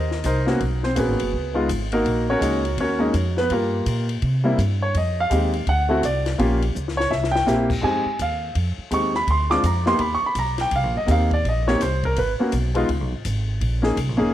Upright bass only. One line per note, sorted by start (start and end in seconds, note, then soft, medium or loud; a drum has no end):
0.00 0.24 D#2 medium
0.24 0.59 C2 medium
0.61 0.96 B1 medium
0.96 1.08 A#1 medium
1.08 1.20 G#1 medium
1.21 1.32 F#1 medium
1.33 1.68 C#2 medium
1.69 2.04 G#1 medium
2.05 2.40 A#1 medium
2.41 2.76 C#2 medium
2.78 3.13 D#2 medium
3.14 3.49 F2 medium
3.50 3.85 G2 medium
3.86 4.21 A#2 medium
4.22 4.57 C3 medium
4.58 4.93 G2 medium
4.94 5.29 F2 medium
5.31 5.66 D#2 medium
5.67 6.02 D2 medium
6.03 6.38 C2 medium
6.39 6.74 A#1 medium
6.75 7.10 C#2 medium
7.11 7.46 C2 medium
7.47 7.82 A#1 medium
7.83 8.04 F2 medium
8.05 muted upright bass stroke soft
8.20 8.54 D#2 medium
8.55 8.76 F2 medium
8.78 muted upright bass stroke soft
8.91 9.26 D#2 medium
9.27 9.62 D2 medium
9.63 9.99 F2 medium
9.99 10.21 D#2 medium
10.22 muted upright bass stroke soft
10.35 10.71 B1 medium
10.71 10.83 C2 medium
10.83 10.95 A#1 medium
10.95 11.07 G1 medium
11.08 11.43 D#2 medium
11.44 11.79 A#1 medium
11.80 12.15 C2 medium
12.17 12.38 G#1 medium
12.40 muted upright bass stroke soft
12.53 12.88 B1 medium
12.89 13.01 C#2 medium
13.01 13.12 B1 medium
13.12 13.24 G#1 medium
13.25 13.60 G#1 medium
13.61 13.96 A#1 medium
13.97 14.08 C2 medium
14.09 14.21 A#1 medium
14.21 14.32 F#1 medium